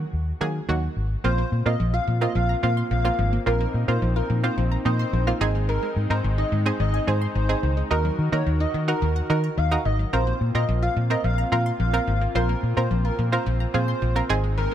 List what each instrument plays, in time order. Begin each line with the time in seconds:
Already playing: synth pluck D#3 F#3 A#3 F#4
0.13 fingered electric bass D#2
0.41 synth pluck D#3 F#3 A#3 G#4, fingered electric bass D#3
0.69 fingered electric bass D#2, synth pluck D#3 F#3 A#3 F#4
0.96 fingered electric bass G#1
1.24 fingered electric bass A#1, synth arpeggio sound F3, synth pluck A#3 C4 F4, analog synth pad A#3 C4 F4, digital synth lead C5
1.38 synth arpeggio sound A#3
1.52 fingered electric bass A#2
1.66 fingered electric bass A#2, synth pluck A#3 C4 F4, synth arpeggio sound C4, digital synth lead D#5
1.80 fingered electric bass A#1, synth arpeggio sound F3
1.94 synth arpeggio sound F4, digital synth lead F5
2.08 fingered electric bass A#2, synth arpeggio sound F3
2.21 synth pluck A#3 C4 F4, digital synth lead D#5, synth arpeggio sound F5
2.35 fingered electric bass A#1, synth arpeggio sound F3, digital synth lead F5
2.49 synth arpeggio sound A#5
2.63 fingered electric bass A#2, synth arpeggio sound F3, synth pluck A#3 C4 F4, digital synth lead F5
2.77 synth arpeggio sound C6
2.91 fingered electric bass A#1, synth arpeggio sound F3, digital synth lead F5
3.05 synth pluck A#3 C4 F4, synth arpeggio sound F6
3.19 fingered electric bass G#1, synth arpeggio sound F3
3.33 synth arpeggio sound A#3
3.46 fingered electric bass A#1, synth arpeggio sound F3, synth pluck A#3 C4 F4, analog synth pad D#4, digital synth lead A#4
3.61 synth arpeggio sound A#3
3.74 fingered electric bass A#2
3.88 fingered electric bass A#2, synth pluck A#3 C4 F4, synth arpeggio sound C4, digital synth lead C5
4.02 fingered electric bass A#1, synth arpeggio sound F3
4.16 synth arpeggio sound F4, digital synth lead A#4
4.30 fingered electric bass A#2, synth arpeggio sound F3
4.43 synth pluck A#3 C4 F4, digital synth lead C5, synth arpeggio sound F5
4.58 fingered electric bass A#1, synth arpeggio sound F3
4.72 synth arpeggio sound A#5
4.85 fingered electric bass A#2, synth arpeggio sound F3, synth pluck A#3 C4 D#4, digital synth lead C5
4.99 synth arpeggio sound C6
5.13 fingered electric bass A#1, synth arpeggio sound F3
5.27 synth pluck A#3 C4 F4, synth arpeggio sound F6
5.41 fingered electric bass G#1, synth arpeggio sound D#3, analog synth pad G#3, synth pluck C4 D#4 G#4
5.55 synth arpeggio sound G#3
5.69 synth arpeggio sound D#3, digital synth lead A#4
5.83 synth arpeggio sound G#3
5.96 fingered electric bass G#2
6.10 fingered electric bass G#2, synth pluck C4 D#4 A#4, synth arpeggio sound C4, digital synth lead C5
6.24 fingered electric bass G#1, synth arpeggio sound D#3
6.38 synth arpeggio sound D#4, digital synth lead D#5
6.52 fingered electric bass G#2, synth arpeggio sound D#3
6.66 synth pluck C4 D#4 G#4, digital synth lead C5, synth arpeggio sound D#5
6.80 fingered electric bass G#1, synth arpeggio sound D#3, digital synth lead D#5
6.94 synth arpeggio sound G#5
7.07 fingered electric bass G#2, synth arpeggio sound D#3, synth pluck C4 D#4 G#4, digital synth lead C5
7.21 synth arpeggio sound C6
7.35 fingered electric bass G#1, synth arpeggio sound D#3, digital synth lead C5
7.49 synth pluck C4 D#4 G#4, synth arpeggio sound D#6
7.63 fingered electric bass C#2, synth arpeggio sound D#3
7.77 synth arpeggio sound G#3
7.91 fingered electric bass D#2, analog synth pad D#3 F#4 A#4, synth arpeggio sound D#3, synth pluck D#4 F#4 A#4, digital synth lead A#4
8.05 synth arpeggio sound F#3
8.19 fingered electric bass D#3
8.32 fingered electric bass D#3, synth arpeggio sound A#3, synth pluck D#4 F#4 A#4, digital synth lead C#5
8.46 fingered electric bass D#2, synth arpeggio sound D#3
8.60 synth arpeggio sound D#4, digital synth lead D#5
8.74 fingered electric bass D#3, synth arpeggio sound D#3
8.88 synth pluck D#4 F#4 A#4, digital synth lead A#4, synth arpeggio sound D#5
9.02 fingered electric bass D#2, synth arpeggio sound D#3
9.16 synth arpeggio sound F#5
9.30 fingered electric bass D#3, synth arpeggio sound D#3, synth pluck D#4 F#4 A#4, digital synth lead A#4
9.44 synth arpeggio sound A#5
9.57 fingered electric bass D#2, synth arpeggio sound D#3, digital synth lead F5
9.71 synth pluck D#4 F#4 A#4, synth arpeggio sound D#6
9.85 fingered electric bass G#1, synth arpeggio sound D#3, digital synth lead D#5
9.99 synth arpeggio sound F#3
10.13 fingered electric bass A#1, synth arpeggio sound F3, analog synth pad A#3 C4 F4, synth pluck C4 F4 A#4, digital synth lead C5
10.27 synth arpeggio sound A#3
10.41 fingered electric bass A#2
10.55 fingered electric bass A#2, synth pluck C4 F4 A#4, synth arpeggio sound C4, digital synth lead D#5
10.69 fingered electric bass A#1, synth arpeggio sound F3
10.82 synth arpeggio sound F4, digital synth lead F5
10.96 fingered electric bass A#2, synth arpeggio sound F3
11.10 synth pluck C4 F4 A#4, digital synth lead D#5, synth arpeggio sound F5
11.24 fingered electric bass A#1, synth arpeggio sound F3, digital synth lead F5
11.38 synth arpeggio sound A#5
11.52 fingered electric bass A#2, synth arpeggio sound F3, synth pluck C4 F4 A#4, digital synth lead F5
11.66 synth arpeggio sound C6
11.80 fingered electric bass A#1, synth arpeggio sound F3, digital synth lead F5
11.93 synth pluck C4 F4 A#4, synth arpeggio sound F6
12.08 fingered electric bass G#1, synth arpeggio sound F3
12.21 synth arpeggio sound A#3
12.35 fingered electric bass A#1, synth arpeggio sound F3, synth pluck C4 F4 C5, digital synth lead A#4
12.49 synth arpeggio sound A#3
12.63 fingered electric bass A#2
12.77 fingered electric bass A#2, synth pluck C4 F4 A#4, synth arpeggio sound C4, digital synth lead C5
12.91 fingered electric bass A#1, synth arpeggio sound F3
13.05 synth arpeggio sound F4, digital synth lead A#4
13.19 fingered electric bass A#2, synth arpeggio sound F3
13.32 synth pluck C4 F4 A#4, digital synth lead C5, synth arpeggio sound F5
13.46 fingered electric bass A#1, synth arpeggio sound F3
13.60 synth arpeggio sound A#5
13.74 fingered electric bass A#2, synth arpeggio sound F3, synth pluck C4 F4 G#4, digital synth lead C5
13.88 synth arpeggio sound C6
14.02 fingered electric bass A#1, synth arpeggio sound F3
14.16 synth pluck C4 F4 A#4, synth arpeggio sound F6
14.29 fingered electric bass G#1, synth arpeggio sound D#3, analog synth pad G#3 D#4, synth pluck C4 D#4 G#4
14.44 synth arpeggio sound G#3
14.58 synth arpeggio sound D#3, digital synth lead A#4